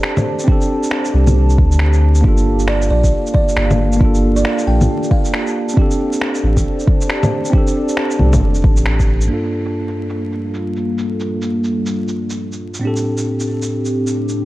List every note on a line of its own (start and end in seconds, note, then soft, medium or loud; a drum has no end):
0.00 0.43 C4 medium
0.00 0.46 D4 medium
0.00 0.47 G4 medium
0.00 5.73 G4 medium
0.00 0.48 A4 loud
0.00 2.21 C5 medium
0.00 2.21 D5 medium
0.00 5.73 A5 medium
0.00 finger snap loud
0.17 low bongo medium
0.17 shaker soft
0.39 shaker medium
0.44 2.21 C4 medium
0.44 2.22 D4 medium
0.44 kick loud
0.49 2.23 G4 medium
0.49 2.24 A4 loud
0.61 shaker soft
0.83 shaker medium
0.91 finger snap loud
1.05 shaker soft
1.14 1.60 C2 medium
1.27 low bongo medium
1.27 shaker medium
1.49 shaker soft
1.58 2.23 D2 medium
1.58 kick loud
1.72 shaker medium
1.79 finger snap loud
1.93 shaker soft
2.15 shaker medium
2.21 2.89 G1 medium
2.21 3.96 A#3 medium
2.21 5.74 A#3 medium
2.21 3.98 D4 medium
2.21 5.73 F5 medium
2.21 kick loud
2.26 4.00 F4 medium
2.26 4.01 A4 loud
2.37 shaker soft
2.59 shaker medium
2.68 2.89 D5 medium
2.68 finger snap loud
2.82 shaker soft
2.90 3.11 A#1 medium
2.90 3.01 D5 medium
3.04 kick medium
3.04 shaker medium
3.26 shaker soft
3.34 3.58 D5 medium
3.34 kick loud
3.49 shaker soft
3.56 4.44 G1 loud
3.56 finger snap loud
3.71 low bongo medium
3.71 shaker soft
3.93 shaker soft
3.97 5.73 A#3 medium
3.97 5.75 D4 medium
3.97 kick loud
4.02 5.76 F4 medium
4.02 5.77 A4 loud
4.15 shaker soft
4.36 4.65 D5 medium
4.36 shaker medium
4.45 finger snap loud
4.59 shaker soft
4.67 4.88 A#1 medium
4.67 5.10 G5 medium
4.81 low bongo medium
4.81 shaker soft
5.03 shaker soft
5.11 5.74 F5 medium
5.11 kick loud
5.25 shaker medium
5.34 finger snap loud
5.47 shaker soft
5.69 shaker medium
5.74 7.49 C4 medium
5.74 7.51 D4 medium
5.74 9.27 D5 medium
5.74 kick loud
5.78 9.27 G4 medium
5.78 7.53 G4 medium
5.78 7.54 A4 loud
5.78 9.27 C5 medium
5.78 9.27 A5 medium
5.91 shaker soft
6.13 shaker medium
6.22 finger snap loud
6.35 shaker soft
6.43 6.64 A1 medium
6.57 kick medium
6.57 shaker medium
6.79 shaker soft
6.87 kick loud
7.01 shaker medium
7.09 finger snap loud
7.23 low bongo medium
7.23 shaker soft
7.45 shaker medium
7.50 9.26 C4 medium
7.50 9.28 D4 medium
7.50 kick loud
7.55 9.29 G4 medium
7.55 9.30 A4 loud
7.67 shaker soft
7.89 shaker medium
7.97 finger snap loud
8.11 shaker soft
8.19 8.43 C2 medium
8.19 low bongo soft
8.33 kick medium
8.33 low bongo medium
8.33 shaker medium
8.42 8.66 F1 loud
8.55 shaker soft
8.64 9.29 A1 medium
8.64 kick loud
8.77 shaker medium
8.86 finger snap loud
9.00 kick medium
9.00 shaker soft
9.21 shaker medium
9.26 12.79 G2 medium
9.26 12.80 G3 medium
9.26 12.80 A#3 medium
9.26 12.81 D4 medium
9.26 12.80 F4 medium
9.26 12.79 A4 medium
9.30 12.80 A#3 medium
9.30 12.82 F4 medium
9.30 12.83 A4 medium
9.44 shaker soft
9.65 shaker medium
9.88 shaker soft
10.09 shaker medium
10.32 shaker soft
10.54 shaker soft
10.76 shaker soft
10.98 shaker soft
11.20 shaker soft
11.42 shaker medium
11.64 shaker soft
11.86 shaker medium
12.08 shaker soft
12.30 shaker medium
12.52 shaker soft
12.74 shaker medium
12.79 14.45 A2 medium
12.79 14.45 C4 medium
12.79 14.45 D4 medium
12.84 14.45 A2 medium
12.84 14.45 C4 medium
12.84 14.45 D4 medium
12.84 14.45 G4 medium
12.84 14.45 A4 medium
12.96 shaker soft
13.18 shaker medium
13.40 shaker soft
13.62 shaker medium
13.85 shaker soft
14.07 shaker soft
14.29 shaker soft